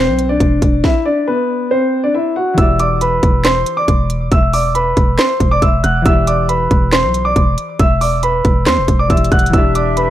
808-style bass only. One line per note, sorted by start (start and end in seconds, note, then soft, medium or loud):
0.08 0.39 B1 loud
0.40 0.61 E1 loud
0.62 0.83 E1 loud
2.58 3.20 E1 loud
3.23 3.65 E1 loud
3.88 4.30 E1 loud
4.32 4.94 E1 loud
4.97 5.18 E1 loud
5.40 5.61 E1 loud
5.62 5.83 E1 loud
5.84 6.05 E1 loud
6.06 6.68 E1 loud
6.71 7.05 E1 loud
7.03 7.34 B1 loud
7.36 7.57 E1 loud
7.80 8.42 E1 loud
8.45 8.68 E1 loud
8.66 8.79 E2 loud
8.77 8.88 E1 loud
8.88 9.09 E1 loud
9.10 9.31 E1 loud
9.32 9.53 E1 loud
9.53 10.10 E1 loud